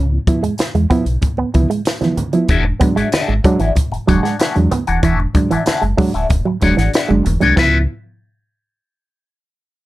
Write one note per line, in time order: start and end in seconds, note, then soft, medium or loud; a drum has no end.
0.00 0.19 C#2 loud
0.12 0.18 B3 soft
0.12 0.18 E4 soft
0.27 0.41 F3 medium
0.27 0.41 B3 medium
0.27 0.41 E4 medium
0.27 muted clean electric guitar stroke soft
0.27 kick medium
0.27 closed hi-hat medium
0.27 high conga medium
0.43 0.49 E2 medium
0.43 0.54 G#3 medium
0.43 closed hi-hat medium
0.58 muted clean electric guitar stroke soft
0.58 snare loud
0.58 closed hi-hat loud
0.58 tambourine loud
0.58 high conga medium
0.75 0.86 E2 medium
0.75 0.86 G#3 medium
0.75 closed hi-hat soft
0.75 muted conga soft
0.90 1.04 F3 medium
0.90 1.01 B3 medium
0.90 1.04 B3 loud
0.90 1.04 E4 loud
0.90 kick loud
0.90 closed hi-hat medium
1.06 1.18 B1 medium
1.06 closed hi-hat medium
1.22 kick medium
1.22 closed hi-hat medium
1.22 muted conga soft
1.22 low conga medium
1.37 1.45 C#2 soft
1.37 1.49 B3 medium
1.37 muted conga soft
1.54 1.66 C#2 loud
1.54 1.67 F3 medium
1.54 1.67 B3 medium
1.54 1.67 E4 medium
1.54 muted clean electric guitar stroke soft
1.54 kick medium
1.54 closed hi-hat medium
1.54 high conga medium
1.70 1.81 G#3 medium
1.70 closed hi-hat medium
1.85 snare loud
1.85 closed hi-hat loud
1.85 tambourine loud
1.85 muted conga soft
2.01 2.12 E3 medium
2.01 2.15 F3 medium
2.01 2.15 B3 medium
2.01 2.15 E4 medium
2.01 snare soft
2.01 closed hi-hat soft
2.01 muted conga soft
2.01 high conga medium
2.17 2.31 C#3 medium
2.17 muted clean electric guitar stroke soft
2.17 closed hi-hat medium
2.17 high conga medium
2.17 low conga medium
2.33 2.44 F3 medium
2.33 2.47 F3 medium
2.33 2.47 B3 medium
2.33 2.47 E4 medium
2.33 closed hi-hat soft
2.48 2.73 E1 medium
2.48 2.63 E3 medium
2.48 2.64 D4 loud
2.48 2.65 F#4 loud
2.48 2.65 G#4 loud
2.48 2.64 E5 loud
2.48 kick loud
2.48 closed hi-hat medium
2.48 muted conga soft
2.65 2.72 G#3 soft
2.65 2.72 D4 soft
2.65 muted clean electric guitar stroke medium
2.80 2.94 F#3 medium
2.80 2.94 G#3 medium
2.80 2.91 B3 medium
2.80 2.95 D4 medium
2.80 muted clean electric guitar stroke soft
2.80 kick loud
2.80 closed hi-hat medium
2.80 high conga medium
2.96 3.03 G#1 soft
2.96 3.07 G#3 medium
2.96 3.09 D4 medium
2.96 3.09 F#4 medium
2.96 3.09 G#4 medium
2.96 3.08 E5 medium
2.96 closed hi-hat medium
3.12 3.32 D4 medium
3.12 3.33 F#4 medium
3.12 3.33 G#4 loud
3.12 3.33 E5 medium
3.12 snare loud
3.12 closed hi-hat loud
3.12 tambourine loud
3.12 muted conga soft
3.12 high conga medium
3.28 3.41 G#1 loud
3.28 3.39 G#3 medium
3.28 muted conga soft
3.44 3.58 F#3 loud
3.44 3.58 G#3 medium
3.44 3.58 D4 loud
3.44 muted clean electric guitar stroke soft
3.44 kick loud
3.44 closed hi-hat medium
3.60 3.72 G#1 medium
3.60 3.71 E3 medium
3.60 3.73 D4 medium
3.60 3.73 F#4 medium
3.60 3.72 G#4 medium
3.60 3.72 E5 medium
3.60 closed hi-hat medium
3.75 muted clean electric guitar stroke soft
3.75 kick medium
3.75 closed hi-hat loud
3.75 muted conga soft
3.75 low conga medium
3.92 3.99 E1 medium
3.92 muted clean electric guitar stroke soft
3.92 closed hi-hat soft
3.92 muted conga soft
4.07 4.20 E1 loud
4.07 4.18 F#3 medium
4.07 4.21 F#3 medium
4.07 4.21 G#3 medium
4.07 4.20 D4 medium
4.07 4.21 D4 medium
4.07 4.20 F#4 medium
4.07 4.20 G#4 medium
4.07 4.20 F#5 medium
4.07 kick medium
4.07 closed hi-hat medium
4.07 high conga medium
4.23 4.34 G#3 medium
4.23 4.36 D4 medium
4.23 4.36 F#4 medium
4.23 4.36 G#4 medium
4.23 4.35 F#5 medium
4.23 snare soft
4.23 closed hi-hat medium
4.39 4.55 D4 medium
4.39 4.55 F#4 medium
4.39 4.55 G#4 medium
4.39 4.55 E5 medium
4.39 snare loud
4.39 closed hi-hat medium
4.39 tambourine loud
4.39 muted conga soft
4.56 4.68 E2 loud
4.56 4.69 F#3 medium
4.56 4.69 G#3 medium
4.56 4.69 D4 medium
4.56 closed hi-hat soft
4.56 high conga medium
4.71 4.82 B3 medium
4.71 muted clean electric guitar stroke soft
4.71 closed hi-hat medium
4.71 high conga medium
4.71 low conga medium
4.87 5.00 D#1 medium
4.87 5.01 E3 medium
4.87 5.00 D4 medium
4.87 5.00 F#4 medium
4.87 4.99 G#4 medium
4.87 4.99 F#5 medium
4.87 closed hi-hat soft
5.03 5.27 E1 loud
5.03 5.16 E3 medium
5.03 5.14 E3 loud
5.03 5.18 D4 medium
5.03 5.19 F#4 loud
5.03 5.19 G#4 medium
5.03 5.19 E5 loud
5.03 kick loud
5.03 closed hi-hat medium
5.20 5.26 G#3 soft
5.20 5.26 D4 soft
5.20 muted clean electric guitar stroke soft
5.20 muted conga soft
5.35 5.48 F#3 medium
5.35 5.48 G#3 medium
5.35 5.48 D4 medium
5.35 muted clean electric guitar stroke soft
5.35 kick loud
5.35 closed hi-hat medium
5.35 high conga medium
5.51 5.58 F#1 soft
5.51 5.61 E3 medium
5.51 5.64 D4 medium
5.51 5.64 F#4 medium
5.51 5.63 G#4 medium
5.51 5.63 E5 medium
5.51 closed hi-hat medium
5.66 5.82 D4 medium
5.66 5.82 F#4 medium
5.66 5.83 G#4 loud
5.66 5.83 E5 medium
5.66 muted clean electric guitar stroke soft
5.66 snare loud
5.66 closed hi-hat loud
5.66 tambourine loud
5.66 muted conga soft
5.66 high conga medium
5.82 5.94 F#1 medium
5.82 5.93 G#3 medium
5.82 closed hi-hat soft
5.82 muted conga soft
5.97 6.11 F#3 loud
5.97 6.09 G#3 medium
5.97 6.11 G#3 medium
5.97 6.12 D4 loud
5.97 muted clean electric guitar stroke soft
5.97 kick loud
5.97 open hi-hat medium
6.14 6.27 D1 medium
6.14 6.27 D4 medium
6.14 6.27 F#4 medium
6.14 6.27 G#4 medium
6.14 6.26 E5 medium
6.14 closed hi-hat medium
6.29 6.42 E1 medium
6.29 kick loud
6.29 closed hi-hat medium
6.29 muted conga soft
6.29 low conga medium
6.45 6.56 F#3 medium
6.45 muted clean electric guitar stroke medium
6.45 muted conga soft
6.61 6.74 E1 medium
6.61 6.75 F#3 medium
6.61 6.75 G#3 medium
6.61 6.74 D4 medium
6.61 6.75 D4 medium
6.61 6.74 F#4 medium
6.61 6.75 G#4 medium
6.61 6.75 F#5 medium
6.61 muted clean electric guitar stroke soft
6.61 kick medium
6.61 closed hi-hat medium
6.61 high conga medium
6.77 6.90 G#1 medium
6.77 6.88 E3 medium
6.77 6.91 D4 medium
6.77 6.91 F#4 medium
6.77 6.90 G#4 medium
6.77 6.90 F#5 medium
6.77 snare soft
6.77 closed hi-hat medium
6.94 7.09 D4 medium
6.94 7.10 F#4 medium
6.94 7.10 G#4 medium
6.94 7.10 E5 medium
6.94 snare loud
6.94 closed hi-hat medium
6.94 tambourine loud
6.94 muted conga soft
7.08 7.22 F#1 medium
7.08 7.23 F#3 medium
7.08 7.20 G#3 medium
7.08 7.23 G#3 medium
7.08 7.23 D4 medium
7.08 muted conga soft
7.08 high conga medium
7.25 7.38 E1 loud
7.25 7.39 E3 medium
7.25 muted clean electric guitar stroke soft
7.25 closed hi-hat medium
7.25 high conga medium
7.25 low conga medium
7.40 7.54 C2 medium
7.40 7.52 F#3 medium
7.40 7.55 F#3 medium
7.40 7.55 G#3 medium
7.40 7.55 D4 medium
7.40 7.54 D4 medium
7.40 7.54 F#4 medium
7.40 7.54 G#4 medium
7.40 7.53 F#5 medium
7.40 closed hi-hat soft
7.40 low conga medium
7.56 7.87 C#2 medium
7.56 7.76 F3 medium
7.56 7.81 F3 medium
7.56 7.81 B3 medium
7.56 7.77 C#4 medium
7.56 7.81 E4 loud
7.56 7.77 F4 loud
7.56 7.77 B4 loud
7.56 7.77 E5 loud
7.56 kick loud
7.56 snare loud
7.56 tambourine medium
7.56 high conga loud